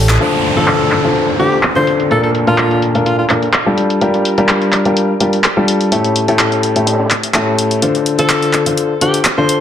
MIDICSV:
0, 0, Header, 1, 6, 480
1, 0, Start_track
1, 0, Key_signature, -1, "minor"
1, 0, Tempo, 476190
1, 206, Time_signature, 4, 2, 24, 8
1, 9681, End_track
2, 0, Start_track
2, 0, Title_t, "Alto saxophone"
2, 0, Program_c, 0, 65
2, 571, Note_on_c, 0, 69, 88
2, 1052, Note_off_c, 0, 69, 0
2, 1405, Note_on_c, 0, 67, 91
2, 1595, Note_off_c, 0, 67, 0
2, 1772, Note_on_c, 0, 72, 85
2, 1957, Note_off_c, 0, 72, 0
2, 2126, Note_on_c, 0, 69, 82
2, 2207, Note_off_c, 0, 69, 0
2, 2252, Note_on_c, 0, 69, 68
2, 2325, Note_off_c, 0, 69, 0
2, 2492, Note_on_c, 0, 65, 86
2, 2846, Note_off_c, 0, 65, 0
2, 3085, Note_on_c, 0, 65, 80
2, 3166, Note_off_c, 0, 65, 0
2, 3212, Note_on_c, 0, 65, 70
2, 3285, Note_off_c, 0, 65, 0
2, 8252, Note_on_c, 0, 69, 89
2, 8732, Note_off_c, 0, 69, 0
2, 9085, Note_on_c, 0, 67, 87
2, 9275, Note_off_c, 0, 67, 0
2, 9451, Note_on_c, 0, 72, 86
2, 9636, Note_off_c, 0, 72, 0
2, 9681, End_track
3, 0, Start_track
3, 0, Title_t, "Upright piano"
3, 0, Program_c, 1, 0
3, 0, Note_on_c, 1, 57, 99
3, 0, Note_on_c, 1, 64, 88
3, 0, Note_on_c, 1, 67, 89
3, 0, Note_on_c, 1, 69, 91
3, 0, Note_on_c, 1, 73, 103
3, 179, Note_off_c, 1, 57, 0
3, 179, Note_off_c, 1, 64, 0
3, 179, Note_off_c, 1, 67, 0
3, 179, Note_off_c, 1, 69, 0
3, 179, Note_off_c, 1, 73, 0
3, 206, Note_on_c, 1, 50, 75
3, 206, Note_on_c, 1, 62, 67
3, 206, Note_on_c, 1, 65, 74
3, 206, Note_on_c, 1, 69, 74
3, 206, Note_on_c, 1, 72, 88
3, 542, Note_off_c, 1, 50, 0
3, 542, Note_off_c, 1, 62, 0
3, 542, Note_off_c, 1, 65, 0
3, 542, Note_off_c, 1, 69, 0
3, 542, Note_off_c, 1, 72, 0
3, 573, Note_on_c, 1, 50, 83
3, 573, Note_on_c, 1, 62, 72
3, 573, Note_on_c, 1, 65, 76
3, 573, Note_on_c, 1, 69, 78
3, 573, Note_on_c, 1, 72, 87
3, 1022, Note_off_c, 1, 50, 0
3, 1022, Note_off_c, 1, 62, 0
3, 1022, Note_off_c, 1, 65, 0
3, 1022, Note_off_c, 1, 69, 0
3, 1022, Note_off_c, 1, 72, 0
3, 1053, Note_on_c, 1, 50, 69
3, 1053, Note_on_c, 1, 62, 62
3, 1053, Note_on_c, 1, 65, 59
3, 1053, Note_on_c, 1, 69, 61
3, 1053, Note_on_c, 1, 72, 77
3, 1306, Note_off_c, 1, 50, 0
3, 1306, Note_off_c, 1, 62, 0
3, 1306, Note_off_c, 1, 65, 0
3, 1306, Note_off_c, 1, 69, 0
3, 1306, Note_off_c, 1, 72, 0
3, 1406, Note_on_c, 1, 50, 66
3, 1406, Note_on_c, 1, 62, 59
3, 1406, Note_on_c, 1, 65, 58
3, 1406, Note_on_c, 1, 69, 59
3, 1406, Note_on_c, 1, 72, 69
3, 1569, Note_off_c, 1, 69, 0
3, 1570, Note_off_c, 1, 50, 0
3, 1570, Note_off_c, 1, 62, 0
3, 1570, Note_off_c, 1, 65, 0
3, 1570, Note_off_c, 1, 72, 0
3, 1773, Note_on_c, 1, 50, 73
3, 1773, Note_on_c, 1, 62, 73
3, 1773, Note_on_c, 1, 65, 68
3, 1773, Note_on_c, 1, 69, 74
3, 1773, Note_on_c, 1, 72, 85
3, 2099, Note_off_c, 1, 50, 0
3, 2099, Note_off_c, 1, 62, 0
3, 2099, Note_off_c, 1, 65, 0
3, 2099, Note_off_c, 1, 69, 0
3, 2099, Note_off_c, 1, 72, 0
3, 2126, Note_on_c, 1, 46, 78
3, 2126, Note_on_c, 1, 62, 71
3, 2126, Note_on_c, 1, 65, 71
3, 2126, Note_on_c, 1, 69, 75
3, 2126, Note_on_c, 1, 70, 84
3, 2462, Note_off_c, 1, 46, 0
3, 2462, Note_off_c, 1, 62, 0
3, 2462, Note_off_c, 1, 65, 0
3, 2462, Note_off_c, 1, 69, 0
3, 2462, Note_off_c, 1, 70, 0
3, 2493, Note_on_c, 1, 46, 86
3, 2493, Note_on_c, 1, 62, 77
3, 2493, Note_on_c, 1, 65, 80
3, 2493, Note_on_c, 1, 69, 75
3, 2493, Note_on_c, 1, 70, 97
3, 2942, Note_off_c, 1, 46, 0
3, 2942, Note_off_c, 1, 62, 0
3, 2942, Note_off_c, 1, 65, 0
3, 2942, Note_off_c, 1, 69, 0
3, 2942, Note_off_c, 1, 70, 0
3, 2973, Note_on_c, 1, 46, 69
3, 2973, Note_on_c, 1, 62, 64
3, 2973, Note_on_c, 1, 65, 64
3, 2973, Note_on_c, 1, 69, 66
3, 2974, Note_on_c, 1, 70, 75
3, 3226, Note_off_c, 1, 65, 0
3, 3227, Note_off_c, 1, 46, 0
3, 3227, Note_off_c, 1, 62, 0
3, 3227, Note_off_c, 1, 69, 0
3, 3227, Note_off_c, 1, 70, 0
3, 3327, Note_on_c, 1, 46, 62
3, 3327, Note_on_c, 1, 62, 61
3, 3327, Note_on_c, 1, 65, 62
3, 3327, Note_on_c, 1, 69, 60
3, 3327, Note_on_c, 1, 70, 71
3, 3490, Note_off_c, 1, 46, 0
3, 3490, Note_off_c, 1, 62, 0
3, 3490, Note_off_c, 1, 65, 0
3, 3490, Note_off_c, 1, 69, 0
3, 3490, Note_off_c, 1, 70, 0
3, 3693, Note_on_c, 1, 55, 82
3, 3693, Note_on_c, 1, 62, 71
3, 3693, Note_on_c, 1, 65, 75
3, 3693, Note_on_c, 1, 67, 69
3, 3693, Note_on_c, 1, 69, 87
3, 4019, Note_off_c, 1, 55, 0
3, 4019, Note_off_c, 1, 62, 0
3, 4019, Note_off_c, 1, 65, 0
3, 4019, Note_off_c, 1, 67, 0
3, 4019, Note_off_c, 1, 69, 0
3, 4046, Note_on_c, 1, 55, 76
3, 4046, Note_on_c, 1, 62, 73
3, 4046, Note_on_c, 1, 65, 75
3, 4046, Note_on_c, 1, 67, 74
3, 4046, Note_on_c, 1, 70, 86
3, 4382, Note_off_c, 1, 55, 0
3, 4382, Note_off_c, 1, 62, 0
3, 4382, Note_off_c, 1, 65, 0
3, 4382, Note_off_c, 1, 67, 0
3, 4382, Note_off_c, 1, 70, 0
3, 4413, Note_on_c, 1, 55, 86
3, 4413, Note_on_c, 1, 62, 76
3, 4413, Note_on_c, 1, 65, 78
3, 4413, Note_on_c, 1, 67, 76
3, 4413, Note_on_c, 1, 70, 93
3, 4862, Note_off_c, 1, 55, 0
3, 4862, Note_off_c, 1, 62, 0
3, 4862, Note_off_c, 1, 65, 0
3, 4862, Note_off_c, 1, 67, 0
3, 4862, Note_off_c, 1, 70, 0
3, 4893, Note_on_c, 1, 55, 70
3, 4893, Note_on_c, 1, 62, 62
3, 4893, Note_on_c, 1, 65, 65
3, 4893, Note_on_c, 1, 67, 60
3, 4893, Note_on_c, 1, 70, 76
3, 5146, Note_off_c, 1, 55, 0
3, 5146, Note_off_c, 1, 62, 0
3, 5146, Note_off_c, 1, 65, 0
3, 5146, Note_off_c, 1, 67, 0
3, 5146, Note_off_c, 1, 70, 0
3, 5246, Note_on_c, 1, 55, 66
3, 5246, Note_on_c, 1, 62, 59
3, 5246, Note_on_c, 1, 65, 61
3, 5246, Note_on_c, 1, 67, 59
3, 5246, Note_on_c, 1, 70, 70
3, 5409, Note_off_c, 1, 62, 0
3, 5409, Note_off_c, 1, 65, 0
3, 5409, Note_off_c, 1, 67, 0
3, 5409, Note_off_c, 1, 70, 0
3, 5410, Note_off_c, 1, 55, 0
3, 5613, Note_on_c, 1, 55, 80
3, 5613, Note_on_c, 1, 62, 68
3, 5613, Note_on_c, 1, 65, 73
3, 5613, Note_on_c, 1, 67, 71
3, 5613, Note_on_c, 1, 69, 84
3, 5939, Note_off_c, 1, 55, 0
3, 5939, Note_off_c, 1, 62, 0
3, 5939, Note_off_c, 1, 65, 0
3, 5939, Note_off_c, 1, 67, 0
3, 5939, Note_off_c, 1, 69, 0
3, 5966, Note_on_c, 1, 45, 78
3, 5966, Note_on_c, 1, 61, 75
3, 5966, Note_on_c, 1, 64, 68
3, 5966, Note_on_c, 1, 67, 70
3, 5966, Note_on_c, 1, 69, 84
3, 6302, Note_off_c, 1, 45, 0
3, 6302, Note_off_c, 1, 61, 0
3, 6302, Note_off_c, 1, 64, 0
3, 6302, Note_off_c, 1, 67, 0
3, 6302, Note_off_c, 1, 69, 0
3, 6332, Note_on_c, 1, 69, 94
3, 6333, Note_on_c, 1, 45, 86
3, 6333, Note_on_c, 1, 61, 74
3, 6333, Note_on_c, 1, 64, 75
3, 6333, Note_on_c, 1, 67, 77
3, 6782, Note_off_c, 1, 45, 0
3, 6782, Note_off_c, 1, 61, 0
3, 6782, Note_off_c, 1, 64, 0
3, 6782, Note_off_c, 1, 67, 0
3, 6782, Note_off_c, 1, 69, 0
3, 6812, Note_on_c, 1, 45, 69
3, 6813, Note_on_c, 1, 61, 65
3, 6813, Note_on_c, 1, 64, 64
3, 6813, Note_on_c, 1, 67, 64
3, 6813, Note_on_c, 1, 69, 75
3, 7066, Note_off_c, 1, 45, 0
3, 7066, Note_off_c, 1, 61, 0
3, 7066, Note_off_c, 1, 64, 0
3, 7066, Note_off_c, 1, 67, 0
3, 7066, Note_off_c, 1, 69, 0
3, 7406, Note_on_c, 1, 45, 88
3, 7406, Note_on_c, 1, 61, 83
3, 7406, Note_on_c, 1, 64, 81
3, 7406, Note_on_c, 1, 67, 84
3, 7406, Note_on_c, 1, 69, 100
3, 7859, Note_off_c, 1, 45, 0
3, 7859, Note_off_c, 1, 61, 0
3, 7859, Note_off_c, 1, 64, 0
3, 7859, Note_off_c, 1, 67, 0
3, 7859, Note_off_c, 1, 69, 0
3, 7885, Note_on_c, 1, 69, 71
3, 7886, Note_on_c, 1, 50, 78
3, 7886, Note_on_c, 1, 62, 73
3, 7886, Note_on_c, 1, 65, 70
3, 7886, Note_on_c, 1, 72, 88
3, 8222, Note_off_c, 1, 50, 0
3, 8222, Note_off_c, 1, 62, 0
3, 8222, Note_off_c, 1, 65, 0
3, 8222, Note_off_c, 1, 69, 0
3, 8222, Note_off_c, 1, 72, 0
3, 8252, Note_on_c, 1, 50, 85
3, 8252, Note_on_c, 1, 62, 77
3, 8252, Note_on_c, 1, 65, 77
3, 8252, Note_on_c, 1, 69, 76
3, 8252, Note_on_c, 1, 72, 99
3, 8702, Note_off_c, 1, 50, 0
3, 8702, Note_off_c, 1, 62, 0
3, 8702, Note_off_c, 1, 65, 0
3, 8702, Note_off_c, 1, 69, 0
3, 8702, Note_off_c, 1, 72, 0
3, 8732, Note_on_c, 1, 50, 69
3, 8732, Note_on_c, 1, 62, 64
3, 8732, Note_on_c, 1, 65, 60
3, 8732, Note_on_c, 1, 69, 62
3, 8732, Note_on_c, 1, 72, 76
3, 8986, Note_off_c, 1, 50, 0
3, 8986, Note_off_c, 1, 62, 0
3, 8986, Note_off_c, 1, 65, 0
3, 8986, Note_off_c, 1, 69, 0
3, 8986, Note_off_c, 1, 72, 0
3, 9085, Note_on_c, 1, 50, 65
3, 9085, Note_on_c, 1, 62, 62
3, 9085, Note_on_c, 1, 65, 64
3, 9085, Note_on_c, 1, 72, 70
3, 9086, Note_on_c, 1, 69, 60
3, 9249, Note_off_c, 1, 50, 0
3, 9249, Note_off_c, 1, 62, 0
3, 9249, Note_off_c, 1, 65, 0
3, 9249, Note_off_c, 1, 69, 0
3, 9249, Note_off_c, 1, 72, 0
3, 9452, Note_on_c, 1, 50, 74
3, 9452, Note_on_c, 1, 62, 75
3, 9452, Note_on_c, 1, 65, 72
3, 9452, Note_on_c, 1, 69, 74
3, 9452, Note_on_c, 1, 72, 85
3, 9681, Note_off_c, 1, 50, 0
3, 9681, Note_off_c, 1, 62, 0
3, 9681, Note_off_c, 1, 65, 0
3, 9681, Note_off_c, 1, 69, 0
3, 9681, Note_off_c, 1, 72, 0
3, 9681, End_track
4, 0, Start_track
4, 0, Title_t, "Analog synth bass"
4, 0, Program_c, 2, 38
4, 0, Note_on_c, 2, 33, 98
4, 183, Note_off_c, 2, 33, 0
4, 9681, End_track
5, 0, Start_track
5, 0, Title_t, "Downlifter"
5, 0, Program_c, 3, 103
5, 206, Note_on_c, 3, 60, 64
5, 4046, Note_off_c, 3, 60, 0
5, 9681, End_track
6, 0, Start_track
6, 0, Title_t, "Drums"
6, 93, Note_on_c, 9, 38, 104
6, 93, Note_on_c, 9, 39, 79
6, 93, Note_on_c, 9, 42, 56
6, 96, Note_on_c, 9, 82, 46
6, 97, Note_on_c, 9, 51, 90
6, 194, Note_off_c, 9, 38, 0
6, 194, Note_off_c, 9, 39, 0
6, 194, Note_off_c, 9, 42, 0
6, 196, Note_off_c, 9, 82, 0
6, 198, Note_off_c, 9, 51, 0
6, 206, Note_on_c, 9, 42, 75
6, 307, Note_off_c, 9, 42, 0
6, 334, Note_on_c, 9, 38, 31
6, 435, Note_off_c, 9, 38, 0
6, 447, Note_on_c, 9, 42, 74
6, 547, Note_off_c, 9, 42, 0
6, 573, Note_on_c, 9, 42, 48
6, 674, Note_off_c, 9, 42, 0
6, 683, Note_on_c, 9, 39, 111
6, 686, Note_on_c, 9, 42, 75
6, 784, Note_off_c, 9, 39, 0
6, 787, Note_off_c, 9, 42, 0
6, 813, Note_on_c, 9, 42, 35
6, 914, Note_off_c, 9, 42, 0
6, 923, Note_on_c, 9, 39, 53
6, 927, Note_on_c, 9, 42, 71
6, 1024, Note_off_c, 9, 39, 0
6, 1027, Note_off_c, 9, 42, 0
6, 1053, Note_on_c, 9, 42, 49
6, 1154, Note_off_c, 9, 42, 0
6, 1167, Note_on_c, 9, 42, 76
6, 1268, Note_off_c, 9, 42, 0
6, 1407, Note_on_c, 9, 42, 78
6, 1508, Note_off_c, 9, 42, 0
6, 1534, Note_on_c, 9, 42, 48
6, 1634, Note_off_c, 9, 42, 0
6, 1643, Note_on_c, 9, 39, 109
6, 1646, Note_on_c, 9, 51, 86
6, 1647, Note_on_c, 9, 42, 75
6, 1744, Note_off_c, 9, 39, 0
6, 1747, Note_off_c, 9, 51, 0
6, 1748, Note_off_c, 9, 42, 0
6, 1777, Note_on_c, 9, 38, 36
6, 1878, Note_off_c, 9, 38, 0
6, 1887, Note_on_c, 9, 42, 73
6, 1988, Note_off_c, 9, 42, 0
6, 2013, Note_on_c, 9, 42, 49
6, 2114, Note_off_c, 9, 42, 0
6, 2119, Note_on_c, 9, 51, 80
6, 2126, Note_on_c, 9, 42, 75
6, 2220, Note_off_c, 9, 51, 0
6, 2227, Note_off_c, 9, 42, 0
6, 2253, Note_on_c, 9, 42, 35
6, 2354, Note_off_c, 9, 42, 0
6, 2363, Note_on_c, 9, 51, 68
6, 2366, Note_on_c, 9, 42, 75
6, 2464, Note_off_c, 9, 51, 0
6, 2467, Note_off_c, 9, 42, 0
6, 2493, Note_on_c, 9, 42, 49
6, 2593, Note_off_c, 9, 42, 0
6, 2603, Note_on_c, 9, 39, 116
6, 2606, Note_on_c, 9, 42, 75
6, 2704, Note_off_c, 9, 39, 0
6, 2707, Note_off_c, 9, 42, 0
6, 2733, Note_on_c, 9, 42, 35
6, 2735, Note_on_c, 9, 38, 42
6, 2834, Note_off_c, 9, 42, 0
6, 2836, Note_off_c, 9, 38, 0
6, 2846, Note_on_c, 9, 42, 71
6, 2850, Note_on_c, 9, 51, 65
6, 2947, Note_off_c, 9, 42, 0
6, 2950, Note_off_c, 9, 51, 0
6, 2973, Note_on_c, 9, 42, 49
6, 3074, Note_off_c, 9, 42, 0
6, 3078, Note_on_c, 9, 51, 80
6, 3086, Note_on_c, 9, 42, 73
6, 3178, Note_off_c, 9, 51, 0
6, 3187, Note_off_c, 9, 42, 0
6, 3323, Note_on_c, 9, 39, 57
6, 3326, Note_on_c, 9, 42, 76
6, 3332, Note_on_c, 9, 38, 39
6, 3423, Note_off_c, 9, 39, 0
6, 3427, Note_off_c, 9, 42, 0
6, 3433, Note_off_c, 9, 38, 0
6, 3447, Note_on_c, 9, 51, 40
6, 3453, Note_on_c, 9, 42, 49
6, 3548, Note_off_c, 9, 51, 0
6, 3554, Note_off_c, 9, 42, 0
6, 3563, Note_on_c, 9, 39, 114
6, 3566, Note_on_c, 9, 42, 73
6, 3664, Note_off_c, 9, 39, 0
6, 3667, Note_off_c, 9, 42, 0
6, 3803, Note_on_c, 9, 51, 55
6, 3806, Note_on_c, 9, 42, 73
6, 3903, Note_off_c, 9, 51, 0
6, 3907, Note_off_c, 9, 42, 0
6, 3933, Note_on_c, 9, 42, 50
6, 4034, Note_off_c, 9, 42, 0
6, 4043, Note_on_c, 9, 51, 74
6, 4046, Note_on_c, 9, 42, 69
6, 4144, Note_off_c, 9, 51, 0
6, 4147, Note_off_c, 9, 42, 0
6, 4171, Note_on_c, 9, 38, 36
6, 4173, Note_on_c, 9, 42, 33
6, 4272, Note_off_c, 9, 38, 0
6, 4273, Note_off_c, 9, 42, 0
6, 4286, Note_on_c, 9, 42, 71
6, 4289, Note_on_c, 9, 51, 60
6, 4387, Note_off_c, 9, 42, 0
6, 4390, Note_off_c, 9, 51, 0
6, 4413, Note_on_c, 9, 42, 46
6, 4514, Note_off_c, 9, 42, 0
6, 4523, Note_on_c, 9, 39, 113
6, 4526, Note_on_c, 9, 42, 75
6, 4623, Note_off_c, 9, 39, 0
6, 4627, Note_off_c, 9, 42, 0
6, 4653, Note_on_c, 9, 42, 34
6, 4754, Note_off_c, 9, 42, 0
6, 4763, Note_on_c, 9, 39, 54
6, 4767, Note_on_c, 9, 42, 70
6, 4864, Note_off_c, 9, 39, 0
6, 4867, Note_off_c, 9, 42, 0
6, 4893, Note_on_c, 9, 42, 47
6, 4898, Note_on_c, 9, 51, 42
6, 4994, Note_off_c, 9, 42, 0
6, 4999, Note_off_c, 9, 51, 0
6, 5004, Note_on_c, 9, 51, 79
6, 5006, Note_on_c, 9, 42, 71
6, 5105, Note_off_c, 9, 51, 0
6, 5107, Note_off_c, 9, 42, 0
6, 5240, Note_on_c, 9, 46, 77
6, 5246, Note_on_c, 9, 42, 69
6, 5341, Note_off_c, 9, 46, 0
6, 5347, Note_off_c, 9, 42, 0
6, 5370, Note_on_c, 9, 51, 37
6, 5373, Note_on_c, 9, 42, 50
6, 5470, Note_off_c, 9, 51, 0
6, 5474, Note_off_c, 9, 42, 0
6, 5483, Note_on_c, 9, 39, 107
6, 5486, Note_on_c, 9, 42, 69
6, 5584, Note_off_c, 9, 39, 0
6, 5587, Note_off_c, 9, 42, 0
6, 5609, Note_on_c, 9, 38, 38
6, 5710, Note_off_c, 9, 38, 0
6, 5727, Note_on_c, 9, 42, 73
6, 5735, Note_on_c, 9, 51, 55
6, 5827, Note_off_c, 9, 42, 0
6, 5835, Note_off_c, 9, 51, 0
6, 5853, Note_on_c, 9, 42, 48
6, 5954, Note_off_c, 9, 42, 0
6, 5963, Note_on_c, 9, 51, 80
6, 5967, Note_on_c, 9, 42, 68
6, 6064, Note_off_c, 9, 51, 0
6, 6068, Note_off_c, 9, 42, 0
6, 6093, Note_on_c, 9, 42, 34
6, 6194, Note_off_c, 9, 42, 0
6, 6206, Note_on_c, 9, 42, 69
6, 6206, Note_on_c, 9, 51, 58
6, 6306, Note_off_c, 9, 51, 0
6, 6307, Note_off_c, 9, 42, 0
6, 6333, Note_on_c, 9, 42, 44
6, 6434, Note_off_c, 9, 42, 0
6, 6443, Note_on_c, 9, 39, 107
6, 6446, Note_on_c, 9, 42, 72
6, 6544, Note_off_c, 9, 39, 0
6, 6547, Note_off_c, 9, 42, 0
6, 6567, Note_on_c, 9, 38, 39
6, 6573, Note_on_c, 9, 42, 33
6, 6668, Note_off_c, 9, 38, 0
6, 6673, Note_off_c, 9, 42, 0
6, 6683, Note_on_c, 9, 51, 61
6, 6686, Note_on_c, 9, 42, 68
6, 6784, Note_off_c, 9, 51, 0
6, 6787, Note_off_c, 9, 42, 0
6, 6813, Note_on_c, 9, 42, 46
6, 6913, Note_off_c, 9, 42, 0
6, 6921, Note_on_c, 9, 38, 84
6, 6922, Note_on_c, 9, 51, 60
6, 6926, Note_on_c, 9, 42, 70
6, 6987, Note_off_c, 9, 51, 0
6, 6987, Note_on_c, 9, 51, 58
6, 6990, Note_off_c, 9, 38, 0
6, 6990, Note_on_c, 9, 38, 79
6, 7027, Note_off_c, 9, 42, 0
6, 7047, Note_off_c, 9, 51, 0
6, 7047, Note_on_c, 9, 51, 66
6, 7051, Note_off_c, 9, 38, 0
6, 7051, Note_on_c, 9, 38, 75
6, 7111, Note_off_c, 9, 51, 0
6, 7111, Note_on_c, 9, 51, 65
6, 7115, Note_off_c, 9, 38, 0
6, 7115, Note_on_c, 9, 38, 81
6, 7163, Note_on_c, 9, 39, 56
6, 7166, Note_off_c, 9, 38, 0
6, 7166, Note_on_c, 9, 38, 41
6, 7166, Note_on_c, 9, 42, 71
6, 7170, Note_off_c, 9, 51, 0
6, 7170, Note_on_c, 9, 51, 63
6, 7263, Note_off_c, 9, 39, 0
6, 7267, Note_off_c, 9, 38, 0
6, 7267, Note_off_c, 9, 42, 0
6, 7271, Note_off_c, 9, 51, 0
6, 7293, Note_on_c, 9, 42, 46
6, 7298, Note_on_c, 9, 51, 45
6, 7393, Note_off_c, 9, 42, 0
6, 7398, Note_off_c, 9, 51, 0
6, 7402, Note_on_c, 9, 39, 111
6, 7406, Note_on_c, 9, 42, 70
6, 7503, Note_off_c, 9, 39, 0
6, 7507, Note_off_c, 9, 42, 0
6, 7646, Note_on_c, 9, 42, 68
6, 7652, Note_on_c, 9, 51, 66
6, 7747, Note_off_c, 9, 42, 0
6, 7752, Note_off_c, 9, 51, 0
6, 7772, Note_on_c, 9, 42, 47
6, 7873, Note_off_c, 9, 42, 0
6, 7879, Note_on_c, 9, 51, 81
6, 7886, Note_on_c, 9, 42, 69
6, 7980, Note_off_c, 9, 51, 0
6, 7986, Note_off_c, 9, 42, 0
6, 8012, Note_on_c, 9, 42, 33
6, 8018, Note_on_c, 9, 38, 35
6, 8113, Note_off_c, 9, 42, 0
6, 8118, Note_off_c, 9, 38, 0
6, 8126, Note_on_c, 9, 42, 71
6, 8130, Note_on_c, 9, 51, 68
6, 8226, Note_off_c, 9, 42, 0
6, 8230, Note_off_c, 9, 51, 0
6, 8252, Note_on_c, 9, 42, 47
6, 8353, Note_off_c, 9, 42, 0
6, 8362, Note_on_c, 9, 39, 102
6, 8366, Note_on_c, 9, 42, 70
6, 8463, Note_off_c, 9, 39, 0
6, 8466, Note_off_c, 9, 42, 0
6, 8492, Note_on_c, 9, 42, 33
6, 8593, Note_off_c, 9, 42, 0
6, 8602, Note_on_c, 9, 39, 51
6, 8606, Note_on_c, 9, 42, 68
6, 8703, Note_off_c, 9, 39, 0
6, 8707, Note_off_c, 9, 42, 0
6, 8732, Note_on_c, 9, 51, 39
6, 8733, Note_on_c, 9, 42, 47
6, 8832, Note_off_c, 9, 51, 0
6, 8833, Note_off_c, 9, 42, 0
6, 8840, Note_on_c, 9, 51, 81
6, 8845, Note_on_c, 9, 42, 68
6, 8941, Note_off_c, 9, 51, 0
6, 8946, Note_off_c, 9, 42, 0
6, 9086, Note_on_c, 9, 42, 70
6, 9086, Note_on_c, 9, 46, 78
6, 9186, Note_off_c, 9, 46, 0
6, 9187, Note_off_c, 9, 42, 0
6, 9212, Note_on_c, 9, 42, 46
6, 9313, Note_off_c, 9, 42, 0
6, 9322, Note_on_c, 9, 39, 98
6, 9326, Note_on_c, 9, 42, 71
6, 9423, Note_off_c, 9, 39, 0
6, 9426, Note_off_c, 9, 42, 0
6, 9454, Note_on_c, 9, 38, 41
6, 9554, Note_off_c, 9, 38, 0
6, 9557, Note_on_c, 9, 51, 61
6, 9566, Note_on_c, 9, 42, 70
6, 9658, Note_off_c, 9, 51, 0
6, 9666, Note_off_c, 9, 42, 0
6, 9681, End_track
0, 0, End_of_file